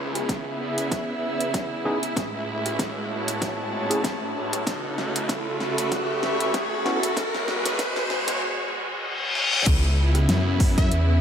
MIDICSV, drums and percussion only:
0, 0, Header, 1, 2, 480
1, 0, Start_track
1, 0, Key_signature, 4, "minor"
1, 0, Tempo, 625000
1, 1665, Time_signature, 4, 2, 24, 8
1, 8609, End_track
2, 0, Start_track
2, 0, Title_t, "Drums"
2, 118, Note_on_c, 9, 37, 54
2, 118, Note_on_c, 9, 42, 68
2, 195, Note_off_c, 9, 37, 0
2, 195, Note_off_c, 9, 42, 0
2, 222, Note_on_c, 9, 36, 93
2, 225, Note_on_c, 9, 38, 49
2, 225, Note_on_c, 9, 42, 53
2, 299, Note_off_c, 9, 36, 0
2, 302, Note_off_c, 9, 38, 0
2, 302, Note_off_c, 9, 42, 0
2, 598, Note_on_c, 9, 42, 65
2, 675, Note_off_c, 9, 42, 0
2, 702, Note_on_c, 9, 36, 92
2, 704, Note_on_c, 9, 38, 49
2, 704, Note_on_c, 9, 42, 52
2, 779, Note_off_c, 9, 36, 0
2, 781, Note_off_c, 9, 38, 0
2, 781, Note_off_c, 9, 42, 0
2, 1079, Note_on_c, 9, 42, 64
2, 1156, Note_off_c, 9, 42, 0
2, 1182, Note_on_c, 9, 36, 95
2, 1184, Note_on_c, 9, 38, 54
2, 1184, Note_on_c, 9, 42, 52
2, 1259, Note_off_c, 9, 36, 0
2, 1261, Note_off_c, 9, 38, 0
2, 1261, Note_off_c, 9, 42, 0
2, 1559, Note_on_c, 9, 42, 66
2, 1635, Note_off_c, 9, 42, 0
2, 1663, Note_on_c, 9, 36, 96
2, 1666, Note_on_c, 9, 38, 57
2, 1666, Note_on_c, 9, 42, 54
2, 1739, Note_off_c, 9, 36, 0
2, 1742, Note_off_c, 9, 38, 0
2, 1742, Note_off_c, 9, 42, 0
2, 2041, Note_on_c, 9, 37, 53
2, 2041, Note_on_c, 9, 42, 68
2, 2117, Note_off_c, 9, 37, 0
2, 2117, Note_off_c, 9, 42, 0
2, 2143, Note_on_c, 9, 36, 96
2, 2147, Note_on_c, 9, 38, 59
2, 2147, Note_on_c, 9, 42, 54
2, 2220, Note_off_c, 9, 36, 0
2, 2223, Note_off_c, 9, 38, 0
2, 2223, Note_off_c, 9, 42, 0
2, 2519, Note_on_c, 9, 42, 66
2, 2596, Note_off_c, 9, 42, 0
2, 2623, Note_on_c, 9, 36, 93
2, 2625, Note_on_c, 9, 38, 64
2, 2625, Note_on_c, 9, 42, 53
2, 2700, Note_off_c, 9, 36, 0
2, 2702, Note_off_c, 9, 38, 0
2, 2702, Note_off_c, 9, 42, 0
2, 3001, Note_on_c, 9, 37, 38
2, 3001, Note_on_c, 9, 42, 65
2, 3078, Note_off_c, 9, 37, 0
2, 3078, Note_off_c, 9, 42, 0
2, 3103, Note_on_c, 9, 36, 94
2, 3107, Note_on_c, 9, 38, 69
2, 3107, Note_on_c, 9, 42, 53
2, 3180, Note_off_c, 9, 36, 0
2, 3184, Note_off_c, 9, 38, 0
2, 3184, Note_off_c, 9, 42, 0
2, 3480, Note_on_c, 9, 37, 53
2, 3480, Note_on_c, 9, 42, 67
2, 3557, Note_off_c, 9, 37, 0
2, 3557, Note_off_c, 9, 42, 0
2, 3584, Note_on_c, 9, 36, 95
2, 3587, Note_on_c, 9, 38, 75
2, 3587, Note_on_c, 9, 42, 54
2, 3661, Note_off_c, 9, 36, 0
2, 3664, Note_off_c, 9, 38, 0
2, 3664, Note_off_c, 9, 42, 0
2, 3826, Note_on_c, 9, 38, 77
2, 3903, Note_off_c, 9, 38, 0
2, 3961, Note_on_c, 9, 42, 70
2, 4038, Note_off_c, 9, 42, 0
2, 4063, Note_on_c, 9, 36, 95
2, 4066, Note_on_c, 9, 38, 77
2, 4066, Note_on_c, 9, 42, 54
2, 4140, Note_off_c, 9, 36, 0
2, 4143, Note_off_c, 9, 38, 0
2, 4143, Note_off_c, 9, 42, 0
2, 4304, Note_on_c, 9, 38, 76
2, 4381, Note_off_c, 9, 38, 0
2, 4441, Note_on_c, 9, 42, 65
2, 4517, Note_off_c, 9, 42, 0
2, 4543, Note_on_c, 9, 36, 96
2, 4545, Note_on_c, 9, 38, 79
2, 4545, Note_on_c, 9, 42, 52
2, 4620, Note_off_c, 9, 36, 0
2, 4622, Note_off_c, 9, 38, 0
2, 4622, Note_off_c, 9, 42, 0
2, 4784, Note_on_c, 9, 38, 87
2, 4861, Note_off_c, 9, 38, 0
2, 4919, Note_on_c, 9, 42, 67
2, 4996, Note_off_c, 9, 42, 0
2, 5023, Note_on_c, 9, 36, 97
2, 5024, Note_on_c, 9, 38, 84
2, 5024, Note_on_c, 9, 42, 54
2, 5100, Note_off_c, 9, 36, 0
2, 5100, Note_off_c, 9, 38, 0
2, 5100, Note_off_c, 9, 42, 0
2, 5267, Note_on_c, 9, 38, 91
2, 5344, Note_off_c, 9, 38, 0
2, 5402, Note_on_c, 9, 42, 67
2, 5478, Note_off_c, 9, 42, 0
2, 5503, Note_on_c, 9, 36, 100
2, 5507, Note_on_c, 9, 38, 95
2, 5507, Note_on_c, 9, 42, 55
2, 5580, Note_off_c, 9, 36, 0
2, 5584, Note_off_c, 9, 38, 0
2, 5584, Note_off_c, 9, 42, 0
2, 5641, Note_on_c, 9, 38, 80
2, 5718, Note_off_c, 9, 38, 0
2, 5745, Note_on_c, 9, 38, 95
2, 5822, Note_off_c, 9, 38, 0
2, 5879, Note_on_c, 9, 38, 88
2, 5879, Note_on_c, 9, 42, 67
2, 5956, Note_off_c, 9, 38, 0
2, 5956, Note_off_c, 9, 42, 0
2, 5982, Note_on_c, 9, 36, 98
2, 5983, Note_on_c, 9, 38, 97
2, 5983, Note_on_c, 9, 42, 54
2, 6059, Note_off_c, 9, 36, 0
2, 6059, Note_off_c, 9, 38, 0
2, 6059, Note_off_c, 9, 42, 0
2, 6116, Note_on_c, 9, 38, 84
2, 6193, Note_off_c, 9, 38, 0
2, 6222, Note_on_c, 9, 38, 95
2, 6299, Note_off_c, 9, 38, 0
2, 6357, Note_on_c, 9, 38, 85
2, 6357, Note_on_c, 9, 42, 65
2, 6434, Note_off_c, 9, 38, 0
2, 6434, Note_off_c, 9, 42, 0
2, 7183, Note_on_c, 9, 38, 65
2, 7260, Note_off_c, 9, 38, 0
2, 7318, Note_on_c, 9, 38, 75
2, 7395, Note_off_c, 9, 38, 0
2, 7422, Note_on_c, 9, 42, 69
2, 7422, Note_on_c, 9, 49, 102
2, 7424, Note_on_c, 9, 36, 123
2, 7499, Note_off_c, 9, 42, 0
2, 7499, Note_off_c, 9, 49, 0
2, 7500, Note_off_c, 9, 36, 0
2, 7795, Note_on_c, 9, 37, 57
2, 7795, Note_on_c, 9, 42, 58
2, 7871, Note_off_c, 9, 37, 0
2, 7871, Note_off_c, 9, 42, 0
2, 7902, Note_on_c, 9, 38, 122
2, 7902, Note_on_c, 9, 42, 69
2, 7979, Note_off_c, 9, 38, 0
2, 7979, Note_off_c, 9, 42, 0
2, 8141, Note_on_c, 9, 46, 63
2, 8143, Note_on_c, 9, 36, 106
2, 8218, Note_off_c, 9, 46, 0
2, 8220, Note_off_c, 9, 36, 0
2, 8277, Note_on_c, 9, 36, 101
2, 8277, Note_on_c, 9, 42, 54
2, 8354, Note_off_c, 9, 36, 0
2, 8354, Note_off_c, 9, 42, 0
2, 8382, Note_on_c, 9, 42, 67
2, 8459, Note_off_c, 9, 42, 0
2, 8609, End_track
0, 0, End_of_file